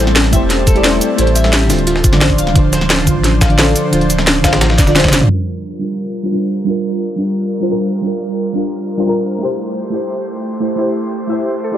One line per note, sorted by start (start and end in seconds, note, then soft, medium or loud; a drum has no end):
0.00 0.34 A1 loud
0.00 1.83 G3 medium
0.00 0.30 A3 loud
0.00 1.84 C4 medium
0.00 0.32 E4 medium
0.00 0.34 G4 medium
0.00 1.84 A4 medium
0.00 0.36 C5 loud
0.00 0.77 D5 loud
0.07 snare soft
0.16 snare loud
0.16 closed hi-hat medium
0.24 snare soft
0.30 1.00 E1 loud
0.30 0.73 A3 medium
0.30 0.73 E4 medium
0.30 0.74 G4 medium
0.30 0.42 E5 medium
0.30 kick medium
0.30 closed hi-hat medium
0.30 shaker medium
0.36 0.75 C5 medium
0.50 snare soft
0.50 closed hi-hat medium
0.67 0.83 A4 loud
0.67 kick loud
0.67 closed hi-hat medium
0.67 shaker medium
0.74 0.81 A3 medium
0.74 0.82 E4 medium
0.74 0.83 G4 medium
0.74 0.84 D5 medium
0.74 closed hi-hat soft
0.83 1.14 A3 loud
0.83 1.16 E4 medium
0.83 1.00 E4 medium
0.83 1.17 G4 medium
0.83 1.17 C5 loud
0.83 snare loud
0.83 closed hi-hat medium
1.01 closed hi-hat medium
1.01 shaker medium
1.15 1.71 A1 loud
1.15 1.66 A3 medium
1.15 1.67 E4 medium
1.15 1.68 G4 medium
1.15 closed hi-hat medium
1.21 1.69 C5 loud
1.27 closed hi-hat soft
1.35 1.51 E5 medium
1.35 closed hi-hat medium
1.35 shaker medium
1.44 snare soft
1.53 1.68 G4 medium
1.53 snare loud
1.53 closed hi-hat medium
1.67 2.06 D1 loud
1.67 2.10 D3 medium
1.67 2.11 D4 medium
1.67 2.12 F4 medium
1.67 snare soft
1.67 closed hi-hat medium
1.67 open hi-hat medium
1.67 shaker medium
1.73 2.12 C5 medium
1.78 closed hi-hat soft
1.87 5.26 F3 medium
1.87 5.26 D4 medium
1.87 2.02 F4 medium
1.87 5.26 C5 medium
1.87 closed hi-hat medium
1.96 snare soft
2.04 2.37 A1 loud
2.04 kick loud
2.04 closed hi-hat medium
2.04 shaker medium
2.11 2.19 D3 medium
2.11 2.19 D4 medium
2.11 2.20 F4 medium
2.11 2.21 D5 loud
2.11 snare soft
2.11 snare medium
2.20 2.52 D3 loud
2.20 2.53 D4 medium
2.20 2.54 F4 medium
2.20 2.54 C5 loud
2.20 snare loud
2.20 closed hi-hat medium
2.30 kick medium
2.30 closed hi-hat soft
2.38 2.54 D1 loud
2.38 2.48 F5 medium
2.38 closed hi-hat loud
2.38 closed hi-hat medium
2.38 shaker medium
2.47 snare soft
2.53 3.08 D1 loud
2.53 3.03 D3 medium
2.53 3.05 D4 medium
2.53 3.05 F4 medium
2.53 kick loud
2.53 closed hi-hat medium
2.58 3.06 C5 loud
2.73 2.89 C5 loud
2.73 snare soft
2.73 closed hi-hat loud
2.73 closed hi-hat medium
2.73 shaker medium
2.81 snare soft
2.90 3.05 F4 medium
2.90 snare loud
2.90 closed hi-hat medium
2.99 snare soft
3.04 3.74 A1 loud
3.04 3.47 D3 medium
3.04 3.48 D4 medium
3.04 3.49 F4 medium
3.04 kick medium
3.04 closed hi-hat medium
3.04 closed hi-hat loud
3.04 shaker medium
3.10 3.50 C5 medium
3.24 snare soft
3.24 closed hi-hat medium
3.41 3.57 F5 medium
3.41 kick loud
3.41 snare loud
3.41 closed hi-hat medium
3.41 shaker medium
3.49 3.56 D3 medium
3.49 3.57 D4 medium
3.49 3.57 F4 medium
3.49 3.58 D5 loud
3.49 closed hi-hat soft
3.57 3.89 D3 loud
3.57 3.90 D4 medium
3.57 3.91 F4 medium
3.57 3.74 A4 medium
3.57 3.91 C5 loud
3.57 snare loud
3.57 closed hi-hat medium
3.76 closed hi-hat medium
3.76 closed hi-hat loud
3.76 shaker medium
3.90 4.46 D1 loud
3.90 4.40 D3 medium
3.90 4.42 D4 medium
3.90 4.08 F4 medium
3.90 4.43 F4 medium
3.90 closed hi-hat medium
3.96 4.44 C5 loud
4.01 closed hi-hat soft
4.10 closed hi-hat medium
4.10 closed hi-hat loud
4.10 shaker medium
4.18 snare soft
4.27 snare loud
4.27 closed hi-hat medium
4.41 4.80 A1 loud
4.41 4.84 D3 medium
4.41 4.85 D4 medium
4.41 4.86 F4 medium
4.41 4.53 F5 medium
4.41 kick medium
4.41 snare loud
4.41 closed hi-hat medium
4.41 closed hi-hat loud
4.41 shaker medium
4.47 4.87 C5 medium
4.53 snare loud
4.53 closed hi-hat medium
4.61 snare loud
4.61 closed hi-hat medium
4.70 snare medium
4.78 4.86 D1 medium
4.78 4.94 D5 medium
4.78 kick loud
4.78 snare medium
4.78 closed hi-hat medium
4.78 closed hi-hat loud
4.78 shaker medium
4.86 5.14 D1 loud
4.86 4.93 D3 medium
4.86 4.94 D4 medium
4.86 4.95 F4 medium
4.86 4.95 D5 loud
4.86 snare soft
4.86 shaker soft
4.94 5.27 D3 loud
4.94 5.28 D4 medium
4.94 5.28 F4 medium
4.94 5.11 C5 medium
4.94 5.29 C5 loud
4.94 snare medium
4.94 closed hi-hat medium
5.00 snare medium
5.00 closed hi-hat medium
5.04 kick medium
5.04 snare medium
5.04 closed hi-hat medium
5.04 mid tom medium
5.08 snare medium
5.08 closed hi-hat medium
5.13 5.21 A1 medium
5.13 snare loud
5.13 closed hi-hat loud
5.13 closed hi-hat medium
5.13 shaker medium
5.21 mid tom medium
5.27 5.77 G3 medium
5.27 9.37 G3 medium
5.27 5.79 D4 medium
5.27 9.37 F4 medium
5.27 9.37 A#4 medium
5.33 5.81 A#4 medium
5.78 6.21 G3 medium
5.78 6.22 D4 medium
5.78 6.23 F4 medium
5.84 6.24 A#4 medium
6.23 6.30 G3 medium
6.23 6.31 D4 medium
6.23 6.32 F4 medium
6.23 6.32 C5 medium
6.31 6.63 G3 medium
6.31 6.65 D4 medium
6.31 6.65 F4 medium
6.31 6.66 A#4 loud
6.64 7.14 G3 medium
6.64 7.16 D4 medium
6.64 7.17 F4 medium
6.70 7.18 A#4 medium
7.16 7.58 G3 medium
7.16 7.59 D4 medium
7.16 7.60 F4 medium
7.21 7.61 A#4 medium
7.60 7.67 G3 medium
7.60 7.68 D4 medium
7.60 7.69 F4 medium
7.60 7.69 C5 medium
7.68 8.00 G3 medium
7.68 8.02 D4 medium
7.68 8.02 F4 medium
7.68 8.03 A#4 loud
8.01 8.52 G3 medium
8.01 8.53 D4 medium
8.01 8.54 F4 medium
8.07 8.55 A#4 medium
8.53 8.95 G3 medium
8.53 8.96 D4 medium
8.53 8.97 F4 medium
8.58 8.98 A#4 medium
8.97 9.04 G3 medium
8.97 9.05 D4 medium
8.97 9.06 F4 medium
8.97 9.06 C5 medium
9.06 9.39 G3 medium
9.06 9.39 D4 medium
9.06 9.39 F4 medium
9.06 9.40 A#4 loud
9.38 9.89 A3 medium
9.38 11.78 A3 medium
9.38 9.90 E4 medium
9.38 11.78 G4 medium
9.38 9.91 G4 medium
9.38 11.78 C5 medium
9.44 9.92 C5 medium
9.90 10.32 A3 medium
9.90 10.33 E4 medium
9.90 10.34 G4 medium
9.96 10.35 C5 medium
10.60 10.74 A3 medium
10.60 10.76 E4 medium
10.60 10.77 G4 medium
10.60 10.77 C5 medium
10.75 11.26 A3 medium
10.75 11.27 E4 medium
10.75 10.94 E4 medium
10.75 11.28 G4 medium
10.81 11.29 C5 medium
11.27 11.70 A3 medium
11.27 11.71 E4 medium
11.27 11.71 G4 medium
11.27 11.39 E5 medium
11.33 11.72 C5 medium
11.64 11.78 A4 medium
11.71 11.78 A3 medium
11.71 11.78 E4 medium
11.71 11.78 G4 medium
11.71 11.78 D5 medium